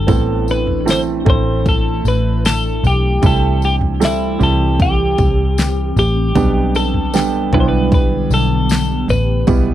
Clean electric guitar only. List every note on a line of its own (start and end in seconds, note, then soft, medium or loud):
0.00 0.51 A4 medium
0.51 0.90 B4 medium
0.91 1.01 C5 medium
1.30 1.68 C5 medium
1.69 2.08 A4 medium
2.08 2.45 B4 medium
2.46 2.86 A4 loud
2.87 3.26 G4 medium
3.26 3.65 A4 medium
3.65 3.75 G4 medium
4.05 4.43 E4 medium
4.43 4.82 A4 medium
4.82 5.98 G4 medium
5.99 6.76 G4 medium
6.76 7.54 A4 loud
7.54 7.60 B4 loud
7.60 7.67 C5 medium
7.69 7.93 B4 loud
7.94 8.33 B4 medium
8.34 9.10 A4 medium
9.10 9.74 B4 loud